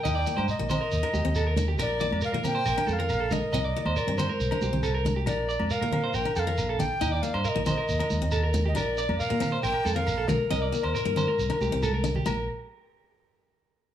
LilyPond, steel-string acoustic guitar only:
\new Staff \with { instrumentName = "Steel-string acoustic guitar" } { \time 4/4 \key bes \major \tempo 4 = 138 ees'8 bes8 r16 bes16 c'8 r16 d'8 c'8 r16 d'8 | d'8 bes8 r16 bes16 c'8 r16 d'8 c'8 r16 d'8 | c'8 bes8 r16 c'16 c'8 r16 d'8 c'8 r16 d'8 | d'8 r8. bes16 c'8 r16 d'8 c'8 r16 d'8 |
ees'8 bes8 r16 bes16 c'8 r8. c'8 r16 d'8 | d'8 r8. bes16 c'8 r8. c'8 r16 d'8 | c'8 bes8 r16 bes16 c'8 r16 d'8 c'8 r16 d'8 | bes8 r2. r8 | }